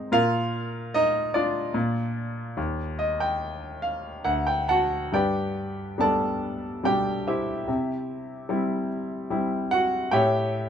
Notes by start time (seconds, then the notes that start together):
Already playing: G#3 C4 D#4 C5
0.12 A#2 F4 A#4 F5
0.94 D#4 D#5
1.34 D4 F4 D5
1.74 A#2
2.57 D#2
2.99 D#5
3.20 G5
3.82 F5
4.24 D2 F#5
4.47 G5
4.68 F#4 F#5 A5
5.12 G2 G4 B4 D5 G5
5.98 G3 B3 D4 A4 D5 A5
6.83 B2 G3 D4 G4 G5
7.27 E4 G4 C5 E5
7.68 C3
8.49 G3 C4 E4
9.30 G3 C4 E4
9.71 F#4 F#5
10.11 A2 G4 C#5 E5 G5